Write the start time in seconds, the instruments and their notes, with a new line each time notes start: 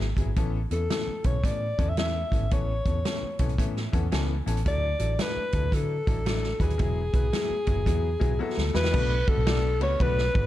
0.00 fingered electric bass G#1, snare
0.17 fingered electric bass G1, upright piano F#3 B3 E4 G#4, kick, closed hi-hat
0.26 fingered electric bass G#1
0.36 fingered electric bass A1, upright piano E3 B3 C#4 A4, kick, closed hi-hat
0.71 fingered electric bass E2, upright piano E3 B3 C#4 A4, alto saxophone A4, closed hi-hat
0.90 upright piano E3 B3 C#4 A4, snare, closed hi-hat
1.08 muted fingered electric bass stroke
1.24 fingered electric bass B1, upright piano E3 B3 C#4 A4, alto saxophone C#5, kick, closed hi-hat
1.44 fingered electric bass A2, upright piano E3 B3 C#4 A4, alto saxophone D5, kick, closed hi-hat
1.78 fingered electric bass E2, upright piano E3 B3 C#4 A4, kick, closed hi-hat
1.89 alto saxophone E5
1.97 upright piano E3 B3 C#4 A4, alto saxophone E5, snare, closed hi-hat
2.31 fingered electric bass G#1, upright piano E3 B3 C#4 A4, kick, closed hi-hat
2.51 fingered electric bass A1, upright piano E3 B3 C#4 A4, alto saxophone C#5, kick, closed hi-hat
2.86 fingered electric bass E2, upright piano E3 B3 C#4 A4, kick, closed hi-hat
3.05 upright piano E3 B3 C#4 A4, snare, closed hi-hat
3.22 muted fingered electric bass stroke
3.39 fingered electric bass B1, upright piano E3 B3 C#4 A4 C#5, kick, closed hi-hat
3.49 closed hi-hat
3.58 fingered electric bass A2, upright piano E3 B3 C#4 A4 E5, kick, closed hi-hat
3.76 snare
3.92 fingered electric bass E2, upright piano E3 B3 C#4 A4 F#5, kick, closed hi-hat
4.12 fingered electric bass C#2, upright piano E3 B3 C#4 A4 G#5, snare, closed hi-hat
4.46 fingered electric bass A1, upright piano E3 B3 C#4 A4 A5, closed hi-hat
4.57 closed hi-hat
4.65 fingered electric bass D2, upright piano F#3 D4 E4 A4, alto saxophone D5, kick, closed hi-hat
4.99 fingered electric bass A1, upright piano F#3 D4 E4 A4, closed hi-hat
5.19 upright piano F#3 D4 E4 A4, alto saxophone B4, snare, closed hi-hat
5.36 muted fingered electric bass stroke
5.52 fingered electric bass D2, upright piano F#3 D4 E4 A4, kick, closed hi-hat
5.72 fingered electric bass D3, upright piano F#3 D4 E4 A4, alto saxophone A4, kick, closed hi-hat
6.07 fingered electric bass A1, upright piano F#3 D4 E4 A4, kick, closed hi-hat
6.25 upright piano F#3 D4 E4 A4, snare, closed hi-hat
6.43 snare
6.60 fingered electric bass D#2, upright piano F#3 D4 E4 B4, alto saxophone G#4, kick, closed hi-hat
6.70 closed hi-hat
6.78 fingered electric bass E1, upright piano F#3 B3 E4 G#4, kick, closed hi-hat
7.13 fingered electric bass B1, upright piano F#3 B3 E4 B4, kick, closed hi-hat
7.33 upright piano F#3 B3 E4 G#4, snare, closed hi-hat
7.50 muted fingered electric bass stroke
7.66 fingered electric bass F#1, upright piano F#3 B3 E4 G#4, kick, closed hi-hat
7.85 fingered electric bass E2, upright piano F#3 B3 E4 G#4, kick, closed hi-hat
8.20 fingered electric bass B1, upright piano F#3 B3 E4 G#4, kick, closed hi-hat
8.39 upright piano F#3 B3 E4 F#4, alto saxophone A4, muted fingered electric bass stroke
8.57 fingered electric bass D2, snare
8.74 fingered electric bass E2, upright piano F#3 B3 E4 B4, alto saxophone B4, snare
8.84 snare
8.92 fingered electric bass B1, upright piano A3 B3 D4 F#4 B4, kick, crash
9.27 upright piano A3 B3 D4 F#4 B4, alto saxophone A4, kick, ride
9.38 fingered electric bass B1
9.46 upright piano A3 B3 D4 F#4 D5, snare, ride
9.80 fingered electric bass C#2, upright piano A3 B3 D4 F#4 B4, alto saxophone C#5, ride
9.99 fingered electric bass B1, upright piano A3 B3 D4 F#4 B4, alto saxophone B4, kick, ride
10.18 snare
10.33 fingered electric bass G#1, upright piano A3 B3 D4 F#4 B4, kick, ride